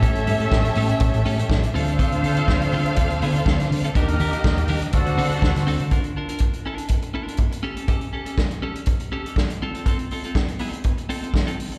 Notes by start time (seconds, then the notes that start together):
Already playing: A3 C#4 G4 A4 C#5 E5
0.01 C#4 G4 A4, kick, closed hi-hat
0.15 A1, muted clean electric guitar stroke, closed hi-hat
0.27 A2 C#4 G4 A4, open hi-hat
0.40 C#4 G4 A4, closed hi-hat
0.52 A1, kick, snare
0.65 muted clean electric guitar stroke, closed hi-hat
0.75 A2 C#4 G4 A4, open hi-hat
0.89 muted clean electric guitar stroke, closed hi-hat
1.00 A1, muted clean electric guitar stroke, kick, closed hi-hat
1.14 A1, muted clean electric guitar stroke, closed hi-hat
1.26 A2 C#4 G4 A4, open hi-hat
1.38 C#4 G4 A4, closed hi-hat
1.49 A1, kick, snare
1.63 muted clean electric guitar stroke, closed hi-hat
1.74 D2 D3 C4 D4 F4 A4 C5 F5, open hi-hat
1.88 C4 F4 A4, closed hi-hat
1.99 C4 F4 A4, kick, closed hi-hat
2.11 D2, muted clean electric guitar stroke, closed hi-hat
2.23 D3 C4 F4 A4, open hi-hat
2.37 C4 F4 A4, closed hi-hat
2.48 D2, kick, snare
2.62 muted clean electric guitar stroke, closed hi-hat
2.72 D3 C4 F4 A4, open hi-hat
2.86 muted clean electric guitar stroke, closed hi-hat
2.96 D2, muted clean electric guitar stroke, kick, closed hi-hat
3.10 D2, muted clean electric guitar stroke, closed hi-hat
3.22 D3 C4 F4 A4, open hi-hat
3.36 C4 F4 A4, closed hi-hat
3.46 D2 C4 F4 A4, kick, snare
3.60 muted clean electric guitar stroke, snare, closed hi-hat
3.71 D3, muted clean electric guitar stroke, open hi-hat
3.84 C4 F4 A4, closed hi-hat
3.95 D#2 D#3 A#3 D4 D#4 G4 A#4 D#5, kick, closed hi-hat
4.08 D#2, muted clean electric guitar stroke, closed hi-hat
4.20 D#3 D4 G4 A#4, open hi-hat
4.33 D4 G4 A#4, closed hi-hat
4.44 D#2, kick, snare
4.57 muted clean electric guitar stroke, closed hi-hat
4.68 D#3 D4 G4 A#4, open hi-hat
4.82 muted clean electric guitar stroke, closed hi-hat
4.93 D2 D3 C4 D4 F#4 A4 C5 F#5, muted clean electric guitar stroke, kick, closed hi-hat
5.06 D2, muted clean electric guitar stroke, closed hi-hat
5.18 D3 C4 F#4 A4, open hi-hat
5.30 C4 F#4 A4, closed hi-hat
5.42 D2, muted clean electric guitar stroke, kick, snare
5.56 D3, muted clean electric guitar stroke, snare, closed hi-hat
5.67 D2 C4 F#4 A4, open hi-hat
5.80 D3 C4 F#4 A4, closed hi-hat
5.91 D4 F4 A#4, kick, closed hi-hat
6.04 muted clean electric guitar stroke, closed hi-hat
6.16 D4 F4 A#4
6.29 D4 F4 A#4, closed hi-hat
6.38 kick, closed hi-hat
6.53 muted clean electric guitar stroke, closed hi-hat
6.66 D4 F4 A#4
6.78 muted clean electric guitar stroke, closed hi-hat
6.88 muted clean electric guitar stroke, kick, closed hi-hat
7.02 muted clean electric guitar stroke, closed hi-hat
7.14 D4 F4 A#4
7.27 D4 F4 A#4, closed hi-hat
7.37 muted clean electric guitar stroke, kick, closed hi-hat
7.52 muted clean electric guitar stroke, closed hi-hat
7.63 C#4 G4 A4
7.76 C#4 G4 A4, closed hi-hat
7.88 C#4 G4 A4, kick, closed hi-hat
8.01 muted clean electric guitar stroke, closed hi-hat
8.13 C#4 G4 A4
8.25 C#4 G4 A4, closed hi-hat
8.38 kick, snare
8.51 muted clean electric guitar stroke, closed hi-hat
8.62 C#4 G4 A4
8.75 muted clean electric guitar stroke, closed hi-hat
8.86 muted clean electric guitar stroke, kick, closed hi-hat
9.00 muted clean electric guitar stroke, closed hi-hat
9.12 C#4 G4 A4
9.25 C#4 G4 A4, closed hi-hat
9.36 muted clean electric guitar stroke, kick, snare
9.50 muted clean electric guitar stroke, closed hi-hat
9.62 C4 F4 A4
9.75 C4 F4 A4, closed hi-hat
9.86 C4 F4 A4, kick, closed hi-hat
9.99 muted clean electric guitar stroke, closed hi-hat
10.11 C4 F4 A4, open hi-hat
10.24 C4 F4 A4, closed hi-hat
10.35 kick, snare
10.48 muted clean electric guitar stroke, closed hi-hat
10.59 C4 F4 A4, open hi-hat
10.73 muted clean electric guitar stroke, closed hi-hat
10.84 muted clean electric guitar stroke, kick, closed hi-hat
10.98 muted clean electric guitar stroke, closed hi-hat
11.09 C4 F4 A4, open hi-hat
11.22 C4 F4 A4, closed hi-hat
11.34 muted clean electric guitar stroke, kick, snare
11.47 C4 F4 A4, closed hi-hat
11.58 muted clean electric guitar stroke, open hi-hat
11.72 muted clean electric guitar stroke, closed hi-hat